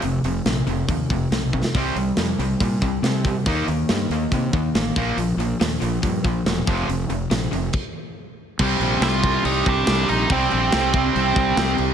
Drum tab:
CC |----------------|----------------|----------------|----------------|
HH |o-o-o-o-o-o-o---|o-o-o-o-o-o-o-o-|o-o-o-o-o-o-o-o-|o-o-o-o-o-o-o-o-|
SD |----o-------o--o|----o-------o---|----o-------o---|----o-------o---|
BD |--------o-o---o-|o-------o-o---o-|o-------o-o---o-|--------o-o---o-|

CC |--------x-------|x-x-x-x-x-x-x-x-|x-x-x-x-x-x-x-x-|
HH |o-o-o-o---------|----------------|----------------|
SD |----o-----------|----o-------o---|----o-------o---|
BD |--------o-------|o-----o---o-----|o-----o---o-----|